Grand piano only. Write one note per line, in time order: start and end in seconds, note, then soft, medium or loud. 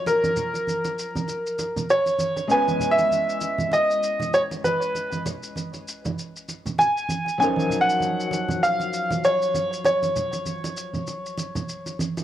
0.07 1.95 A#4 medium
1.90 2.53 C#5 medium
2.51 2.93 G#5 medium
2.91 3.75 E5 loud
3.73 4.36 D#5 medium
4.34 4.41 C#5 medium
4.64 5.22 B4 medium
6.79 7.36 G#5 medium
7.40 7.82 G#5 medium
7.81 8.65 F#5 medium
8.63 9.26 F5 medium
9.25 9.84 C#5 medium
9.85 11.95 C#5 medium